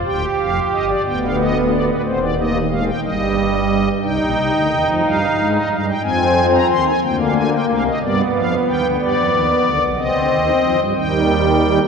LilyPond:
<<
  \new Staff \with { instrumentName = "Pipe organ" } { \time 12/8 \key c \phrygian \tempo 4. = 61 g''8 f''8 ees''16 d''16 g''16 f''16 ees''8 d''16 b'16 c''16 d''16 ees''8 f''16 g''16 ees''4. | \key c \minor g''4. f''8. ees''16 f''16 g''16 aes''8. bes''16 c'''16 aes''16 g''16 f''16 aes''16 g''16 f''16 ees''16 | d''8 f''8 g''8 d''4. ees''4. g''4. | }
  \new Staff \with { instrumentName = "Pipe organ" } { \clef bass \time 12/8 \key c \phrygian << { g'4. b4. c'8 bes8 aes8 g4. | \key c \minor ees'2. c'4. bes4. | b2. c'4. g4. | } \\ { <d,, d,>8 <f,, f,>8 <g,, g,>8 <d,, d,>4. <ees,, ees,>4. <g,, g,>4. | <c, c>16 <bes,, bes,>16 <c, c>16 <d, d>16 <ees, ees>16 <f, f>16 <g, g>8 <aes, aes>8 <g, g>8 <f, f>4 <ees, ees>8 <d, d>4 <c, c>8 | <g, g>8 <f, f>8 <ees, ees>16 <d, d>16 <g, g>16 <f, f>16 <ees, ees>8 <d, d>16 <b,, b,>16 <c, c>16 <d, d>16 <ees, ees>8 <f, f>16 <g, g>16 <ees, ees>4. | } >> }
>>